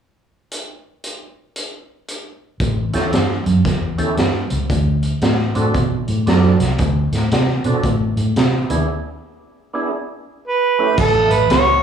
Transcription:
0.51 closed hi-hat
1.04 closed hi-hat
1.56 closed hi-hat
2.08 closed hi-hat
2.60 A1, kick, closed hi-hat
2.93 E2 C#4 E4 G4 A4, snare, closed hi-hat
3.13 G2, snare, closed hi-hat
3.46 F#2, closed hi-hat
3.65 E2, kick, snare, closed hi-hat
3.98 E2 C#4 E4 G4 A4, closed hi-hat
4.17 G2, snare, closed hi-hat
4.50 C#2, closed hi-hat
4.70 D2, kick, closed hi-hat
5.03 closed hi-hat
5.21 A2, snare, closed hi-hat
5.55 A2 C4 D4 F#4 A4, closed hi-hat
5.74 B2, kick, closed hi-hat
6.08 A2, closed hi-hat
6.26 F#2 C4 D4 F#4 A4, snare, closed hi-hat
6.60 C2, snare, closed hi-hat
6.78 D2, kick, closed hi-hat
7.12 A2, snare, closed hi-hat
7.31 C3, snare, closed hi-hat
7.64 B2 C4 D4 F#4 A4, closed hi-hat
7.83 A2, kick, closed hi-hat
8.16 A2, closed hi-hat
8.36 C3, snare, closed hi-hat
8.70 D#2 B3 D4 E4 G#4, closed hi-hat
9.74 B3 D4 E4 G#4
10.47 B4
10.79 A3 C#4 E4 G4
10.98 A1 A4, kick, crash
11.31 A1 B4, closed hi-hat
11.50 C#2 C#5, snare, closed hi-hat

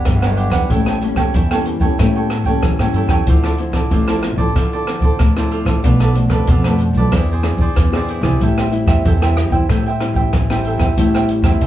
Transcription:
Already playing: G4 B4 F#5
0.05 G1 D3, kick, cross-stick, closed hi-hat
0.22 F#3 B3 D4 G4 B4 F#5, cross-stick
0.36 D4 G4 B4 F#5, closed hi-hat
0.50 E2 G4 B4 F#5, kick, cross-stick, closed hi-hat
0.70 A1 A2 G3 A#3 C#4 E4 A4 C#5 G5, kick, closed hi-hat
0.86 A4 C#5 G5, cross-stick, closed hi-hat
1.01 G3 A#3 C#4, muted cavaquinho stroke, closed hi-hat
1.15 E2 G5, kick, cross-stick
1.19 A4 C#5
1.34 E2 E3 E4 A4 C#5 G5, kick, closed hi-hat
1.51 G3 A#3 C#4 A4 C#5 G5, cross-stick, closed hi-hat
1.66 muted cavaquinho stroke, closed hi-hat
1.79 E2 G3 A#3 C#4 A4 C#5 G5, kick, closed hi-hat
1.98 A2 G3 A#3 C#4 E4 A4 C#5 G5, kick, cross-stick, closed hi-hat
2.15 A4 C#5 G5
2.30 cross-stick, closed hi-hat
2.44 A1 G3 A#3 C#4 C#5 G5, kick, closed hi-hat
2.48 A4
2.63 A1 E3, kick, cross-stick, closed hi-hat
2.79 A2 G3 A#3 C#4 A4 C#5 G5, cross-stick
2.93 G2 E4 A4 C#5 G5, closed hi-hat
3.07 E2 G5, kick, cross-stick, closed hi-hat
3.12 A4 C#5
3.27 D2 D3 F3 C4 E4 F4 A4 C5 D5, kick, closed hi-hat
3.44 A4 C5 D5, cross-stick
3.58 F3 C4 E4, muted cavaquinho stroke, closed hi-hat
3.72 A1 A4 C5 D5, kick, cross-stick, closed hi-hat
3.91 A1 A2 F4 A4 C5 D5, kick, closed hi-hat
4.08 F3 C4 E4 A4 C5 D5, cross-stick, closed hi-hat
4.23 muted cavaquinho stroke, cross-stick, closed hi-hat
4.36 A1 F3 C4 E4 C5 D5, kick, closed hi-hat
4.40 A4
4.55 D3 F3 C4 E4 F4 A4 C5 D5, kick, cross-stick, closed hi-hat
4.73 A4 C5 D5, closed hi-hat
4.86 F3 C4 E4, cross-stick, closed hi-hat
5.00 D2 C5 D5, kick, closed hi-hat
5.05 A4
5.19 D2 A2, kick, cross-stick, closed hi-hat
5.36 F3 C4 E4 A4 C5 D5, cross-stick
5.51 F4 A4 C5 D5, closed hi-hat
5.65 A1 A4 C5 D5, kick, cross-stick, closed hi-hat
5.83 B1 B2 F3 A3 D4 F4 A4 B4 D5, kick, closed hi-hat
6.00 A4 B4 D5, cross-stick, closed hi-hat
6.14 F3 A3 D4, muted cavaquinho stroke, closed hi-hat
6.28 F2 B4 D5, kick, cross-stick
6.33 A4
6.47 F2 B2 F4 A4 B4, kick, closed hi-hat
6.51 D5
6.63 F3 A3 D4 B4 D5, cross-stick, closed hi-hat
6.68 A4
6.79 muted cavaquinho stroke, closed hi-hat
6.93 B1, kick, closed hi-hat
6.97 A4 B4 D5
7.11 E2 E3 C4 D4 E4 G#4, kick, cross-stick, closed hi-hat
7.16 G#4 C5 D5
7.32 G#4 C5 D5
7.43 C4 D4 G#4, cross-stick, closed hi-hat
7.57 E2 D5, kick, closed hi-hat
7.62 G#4 C5
7.75 E2 E3, kick, cross-stick, closed hi-hat
7.91 C4 D4 G#4 D5, cross-stick
7.97 G#4 C5
8.08 E4 G#4 C5 D5, closed hi-hat
8.21 C2 G3 C4 E4 C5 D5, kick, cross-stick, closed hi-hat
8.25 G#4
8.40 A1 A2 A4 C5 E5 G5, kick, closed hi-hat
8.58 C5 E5 G5, cross-stick
8.71 G3 C4 E4, muted cavaquinho stroke, closed hi-hat
8.86 E2 C5 E5 G5, kick, cross-stick, closed hi-hat
9.05 E2 E3 A4 C5 E5 G5, kick, closed hi-hat
9.21 G3 C4 E4 C5 E5 G5, cross-stick, closed hi-hat
9.37 muted cavaquinho stroke, cross-stick, closed hi-hat
9.50 E2 G3 C4 E4 C5 E5 G5, kick, closed hi-hat
9.68 A2 G3 C4 E4 A4 C5 E5 G5, kick, cross-stick, closed hi-hat
9.86 C5 E5 G5, closed hi-hat
10.00 G3 C4 E4, cross-stick, closed hi-hat
10.14 A1 C5 E5 G5, kick, closed hi-hat
10.33 A1 E3, kick, cross-stick, closed hi-hat
10.50 G3 C4 E4 E5 G5, cross-stick
10.54 C5
10.65 A4 C5 E5 G5, closed hi-hat
10.78 E2 G5, kick, cross-stick, closed hi-hat
10.82 C5 E5
10.98 A1 A2 G3 C4 E4 A4 C5 E5 G5, kick, closed hi-hat
11.15 C5 E5 G5, cross-stick, closed hi-hat
11.29 muted cavaquinho stroke, closed hi-hat
11.42 E2 G3 C4 E4 G5, kick, cross-stick
11.46 C5 E5
11.61 E2 E3 A4 C5 E5 G5, kick, closed hi-hat

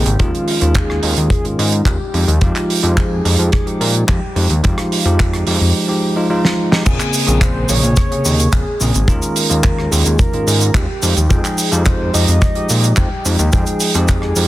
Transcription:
Already playing: G4
0.06 G#1, closed hi-hat
0.19 D#2 D#3 G#3 C#4 F4, kick, closed hi-hat
0.35 closed hi-hat
0.48 open hi-hat
0.61 D#2 D#3 G#3 C#4 F4, closed hi-hat
0.75 G#4, kick, clap, closed hi-hat
0.90 cross-stick
1.02 D#2 D#3 G#3 C#4 F4, open hi-hat
1.17 D#2, closed hi-hat
1.30 G#4, kick, closed hi-hat
1.44 G#2 D#3 G#3 C#4 F4, closed hi-hat
1.59 G#2 D#4, open hi-hat
1.72 closed hi-hat
1.85 D#2 D#3 G#3 C#4 F4 G4, kick, clap, closed hi-hat
2.14 F2 F3 G#3 D#4 G4, open hi-hat
2.28 D#2, closed hi-hat
2.41 F2 F3 G#3 D#4 F4 G4, kick, closed hi-hat
2.56 clap, closed hi-hat
2.70 open hi-hat
2.83 F2 F3 G#3 D#4 G4, closed hi-hat
2.97 G#4, kick, clap, closed hi-hat
3.24 F2 F3 G#3 D#4 G4, open hi-hat
3.39 F2, closed hi-hat
3.52 G#4, kick, cross-stick, closed hi-hat
3.66 F3 G#3 D#4 G4, closed hi-hat
3.81 A#2 D#4, open hi-hat
3.94 closed hi-hat
4.07 F2 F3 G#3 D#4 G4, kick, clap, closed hi-hat
4.35 F2 F3 G#3 D#4 G4, open hi-hat
4.49 D#2, closed hi-hat
4.63 F2 F3 G#3 D#4 F4 G4, kick, closed hi-hat
4.78 cross-stick, closed hi-hat
4.92 open hi-hat
5.05 F2 F3 G#3 D#4 G4, closed hi-hat
5.20 kick, clap, closed hi-hat
5.33 cross-stick, closed hi-hat
5.47 F2 F3 G#3 D#4 G4, open hi-hat
5.61 F2, open hi-hat
5.88 F3 G#3 D#4 G4
6.16 F3 G#3 D#4 F4
6.30 F3 G#3 D#4 F4
6.45 snare
6.71 F3 G#3 D#4 G4, snare
6.85 A#1 C#3 A#3 C4 G#4, kick, closed hi-hat, crash, shaker
7.00 clap, closed hi-hat, shaker
7.14 open hi-hat, shaker
7.27 A#1 C#3 A#3 C4 G#4, closed hi-hat, shaker
7.41 C5, kick, clap, closed hi-hat, shaker
7.69 A#1 C3 C#3 A#3 G#4 C#5, open hi-hat, shaker
7.83 A#1, closed hi-hat, shaker
7.96 kick, cross-stick, closed hi-hat, shaker
8.11 C3 C#3 A#3 G#4, closed hi-hat
8.25 D#2, open hi-hat, shaker
8.39 closed hi-hat, shaker
8.53 A#1 C#3 A#3 C4 G#4, kick, clap, closed hi-hat, shaker
8.80 A#1 C#3 A#3 C4 G#4, open hi-hat, shaker
8.94 G#1, closed hi-hat, shaker
9.08 D#2 D#3 G#3 C#4 F4 A#4, kick, closed hi-hat, shaker
9.22 closed hi-hat, shaker
9.36 open hi-hat, shaker
9.49 D#2 D#3 G#3 C#4 F4, closed hi-hat, shaker
9.64 A#4, kick, clap, closed hi-hat, shaker
9.79 cross-stick
9.91 D#2 D#3 G#3 C#4 F4 G#4, open hi-hat, shaker
10.05 D#2, closed hi-hat, shaker
10.19 A#4, kick, closed hi-hat, shaker
10.33 G#2 D#3 G#3 C#4 F4, closed hi-hat
10.47 G#2, open hi-hat, shaker
10.61 closed hi-hat, shaker
10.74 D#2 D#3 G#3 F4 G4, kick, clap, shaker
11.02 F2 F3 G#3 D#4 G4, open hi-hat, shaker
11.17 D#2, closed hi-hat, shaker
11.30 F2 F3 G#3 D#4 G#4 G5, kick, closed hi-hat, shaker
11.44 clap, closed hi-hat, shaker
11.58 open hi-hat, shaker
11.71 F2 F3 G#3 D#4 G4, closed hi-hat, shaker
11.86 C5, kick, clap, closed hi-hat, shaker
12.13 F2 F3 G#3 D#4 G4 D#5, open hi-hat, shaker
12.28 F2, closed hi-hat, shaker
12.42 kick, cross-stick, closed hi-hat, shaker
12.55 F3 G#3 D#4 G4, closed hi-hat
12.69 A#2, open hi-hat, shaker
12.84 closed hi-hat, shaker
12.97 F2 F3 G#3 D#4 G4, kick, clap, closed hi-hat, shaker
13.25 F2 F3 G#3 D#4 G4, open hi-hat, shaker
13.39 D#2, closed hi-hat, shaker
13.52 F2 F3 G#3 D#4 G#4 G5, kick, closed hi-hat, shaker
13.66 closed hi-hat, shaker
13.80 open hi-hat, shaker
13.94 F2 F3 G#3 D#4 G4, closed hi-hat, shaker
14.08 G#4, kick, clap, closed hi-hat, shaker
14.22 cross-stick
14.36 F2 F3 G#3 D#4 G4, open hi-hat, shaker

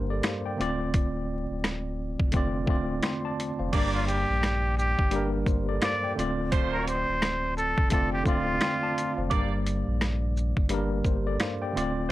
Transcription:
Already playing: G1 G2 G3 A#3 D4 G4 A#4 C5 D5 F5
0.10 A4 D5
0.23 C5 F5, cross-stick, snare, closed hi-hat
0.46 D5 G5
0.57 D1 D3 A3 C4 F4
0.61 D5, closed hi-hat
0.94 kick, closed hi-hat
1.50 D1
1.64 cross-stick, snare, closed hi-hat
2.20 F1, kick
2.32 D3 A3 C4 F4, kick, closed hi-hat
2.36 D5
2.66 D1 D3 A3 C4 F4, kick
2.70 D5
3.03 G5 C6, cross-stick, snare, closed hi-hat
3.25 D5 A5
3.40 closed hi-hat
3.59 F1 C5 F5
3.71 G1 G2 G3 A#3 D4 G4 D5, kick, closed hi-hat, crash
3.76 D5
3.94 F4
4.08 G4, closed hi-hat, shaker
4.29 A#1
4.43 cross-stick, snare, closed hi-hat
4.78 G4, shaker
4.99 G1, kick
5.11 G2 G3 A#3 D4, closed hi-hat
5.15 A#4
5.46 G1 G4 C5, kick, shaker
5.69 A4 D5
5.82 C5 D5 F5, cross-stick, snare, closed hi-hat
6.04 D5 G5
6.15 D1 D3 A3 C4 F4, closed hi-hat, shaker
6.20 D5
6.52 A3 F4 C5, kick, closed hi-hat
6.73 A#4
6.88 C5, closed hi-hat, shaker
7.08 D1
7.22 cross-stick, snare, closed hi-hat
7.57 A4, shaker
7.78 F1, kick
7.90 D3 A3 C4 F4 A4, kick, closed hi-hat
7.95 D5
8.13 G4
8.24 D1 D3 A3 C4 F4, kick, shaker
8.28 D5
8.61 G5 C6, cross-stick, snare, closed hi-hat
8.83 D5 A5
8.98 closed hi-hat, shaker
9.17 F1 C5 F5
9.29 G1 G2 G3 A#3 D4 G4 D5, kick, closed hi-hat
9.34 D5
9.67 closed hi-hat, shaker
9.87 A#1
10.01 cross-stick, snare, closed hi-hat
10.37 shaker
10.57 G1, kick
10.69 G2 G3 A#3 D4, closed hi-hat
10.74 A#4
11.05 G1 G4 C5, kick, shaker
11.27 A4 D5
11.40 C5 F5, cross-stick, snare, closed hi-hat
11.62 D5 G5
11.73 D1 D3 A3 C4 F4
11.77 D5, closed hi-hat, shaker

